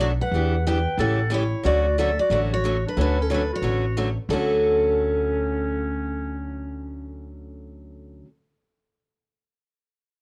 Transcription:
Already playing: B1
0.00 B2 F#3 A3 D4 F#4 D5
0.21 B4 F#5
0.31 E2 E3 B3 D4
0.36 G4
0.66 E3 B3 D4 G4 B4 G5
0.97 A1 C#3 E3 A3 C#4 G4 A4 F#5
1.30 C#3 E3 A3 C#4 E4 G4
1.34 C#5
1.63 D2 D3 F#3 A3 C#4 F#4 D5
1.98 D3 F#3 A3 C#4 F#4 A4 E5
2.19 F#4 D5
2.30 A1 D3 F#3 A3 C#4 F#4 D5
2.53 F#4 C#5
2.64 D3 F#3 A3 C#4 F#4
2.86 D4 B4
2.97 D2 D3 F#3 A3 C#4 D4 F#4
3.01 B4
3.20 C#4 A4
3.30 D3 F#3 A3 C#4 D4 F#4
3.34 B4
3.53 F#4 C#5
3.62 A1 D3 F#3 A3 C#4 F#4
3.97 D3 F#3 A3 C#4 F#4
4.29 D2 D3 F#3 A3 C#4 A4
4.33 F#4

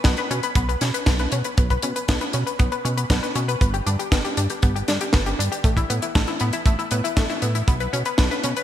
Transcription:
0.04 B1 B3, kick, snare, closed hi-hat
0.17 B4, closed hi-hat
0.31 B2 C#4, closed hi-hat
0.43 B4, closed hi-hat
0.55 B1 B3, kick, closed hi-hat
0.69 B4, closed hi-hat
0.81 B2 C#4, snare, closed hi-hat
0.94 B4, closed hi-hat
1.06 B1 B3, kick, snare, closed hi-hat
1.19 B4, closed hi-hat
1.32 B2 C#4, closed hi-hat
1.44 B4, closed hi-hat
1.57 B1 B3, kick, closed hi-hat
1.70 B4, kick, closed hi-hat
1.82 B2 C#4, closed hi-hat
1.96 B4, closed hi-hat
2.08 B1 B3, kick, snare, closed hi-hat
2.21 B4, closed hi-hat
2.33 B2 C#4, closed hi-hat
2.47 B4, closed hi-hat
2.59 B1 B3, kick, closed hi-hat
2.72 B4, closed hi-hat
2.85 B2 C#4, closed hi-hat
2.97 B4, closed hi-hat
3.10 B1 B3, kick, snare, closed hi-hat
3.23 B4, closed hi-hat
3.35 B2 C#4, closed hi-hat
3.48 B4, closed hi-hat
3.61 G1 B3, kick, closed hi-hat
3.74 G4, closed hi-hat
3.86 G2 D4, closed hi-hat
3.99 G4, closed hi-hat
4.12 G1 B3, kick, snare, closed hi-hat
4.25 G4, closed hi-hat
4.37 G2 D4, closed hi-hat
4.50 G4, closed hi-hat
4.62 G1 B3, kick, closed hi-hat
4.76 G4, closed hi-hat
4.88 G2 D4, snare, closed hi-hat
5.01 G4, closed hi-hat
5.13 G1 B3, kick, snare, closed hi-hat
5.26 G4, closed hi-hat
5.39 G2 D4, closed hi-hat
5.52 G4, closed hi-hat
5.64 A1 A3, kick, closed hi-hat
5.77 E4, kick, closed hi-hat
5.90 A2 B3, closed hi-hat
6.02 E4, closed hi-hat
6.15 A1 A3, kick, snare, closed hi-hat
6.27 E4, closed hi-hat
6.40 A2 B3, closed hi-hat
6.53 E4, closed hi-hat
6.66 A1 A3, kick, closed hi-hat
6.79 E4, closed hi-hat
6.91 A2 B3, closed hi-hat
7.04 E4, closed hi-hat
7.17 A1 A3, kick, snare, closed hi-hat
7.30 E4, closed hi-hat
7.42 A2 B3, closed hi-hat
7.55 E4, closed hi-hat
7.68 B1 B3, kick, closed hi-hat
7.80 B4, closed hi-hat
7.93 B2 C#4, closed hi-hat
8.05 B4, closed hi-hat
8.18 B1 B3, kick, snare, closed hi-hat
8.31 B4, closed hi-hat
8.44 B2 C#4, closed hi-hat
8.56 B4, closed hi-hat

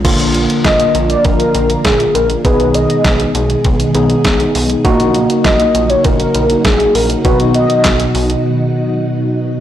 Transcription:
0.05 A#1 D3 F3 A#3 F4 A#4, kick, closed hi-hat, crash
0.20 closed hi-hat
0.35 closed hi-hat
0.50 closed hi-hat
0.65 A#1 D#5, kick, snare, closed hi-hat
0.80 closed hi-hat
0.95 A#1, closed hi-hat
1.10 D5, closed hi-hat
1.25 A#1 A#4, kick, closed hi-hat
1.40 closed hi-hat
1.55 A#1, closed hi-hat
1.70 closed hi-hat
1.84 A#1 G#4, kick, snare, closed hi-hat
2.00 closed hi-hat
2.15 A#1 A#4, closed hi-hat
2.30 closed hi-hat
2.44 B1 B2 D#3 G#3 B3 D#4 G#4 B4, kick, closed hi-hat
2.60 closed hi-hat
2.74 D#5, closed hi-hat
2.90 closed hi-hat
3.04 B1, kick, snare, closed hi-hat
3.20 closed hi-hat
3.35 B1, closed hi-hat
3.50 closed hi-hat
3.65 B1, kick, closed hi-hat
3.80 closed hi-hat
3.95 B1 B3 D#4 G#4, closed hi-hat
4.10 closed hi-hat
4.25 B1, kick, snare, closed hi-hat
4.40 closed hi-hat
4.55 B1, open hi-hat
4.70 closed hi-hat
4.85 A#1 C#3 F#3 A#3 D#4 F#4, kick, closed hi-hat
5.00 closed hi-hat
5.15 closed hi-hat
5.30 closed hi-hat
5.44 A#1 D#5, kick, snare, closed hi-hat
5.60 closed hi-hat
5.75 A#1, closed hi-hat
5.90 C#5, closed hi-hat
6.04 A#1 A#4, kick, closed hi-hat
6.20 closed hi-hat
6.35 A#1, closed hi-hat
6.50 closed hi-hat
6.65 A#1 G#4, kick, snare, closed hi-hat
6.80 closed hi-hat
6.95 A#1 A#4, open hi-hat
7.10 closed hi-hat
7.25 B1 B2 D#3 B3 D#4 F#4 B4, kick, closed hi-hat
7.40 closed hi-hat
7.54 D#5, closed hi-hat
7.70 closed hi-hat
7.84 B1, kick, snare, clap, closed hi-hat
8.00 closed hi-hat
8.15 B1, open hi-hat
8.30 closed hi-hat

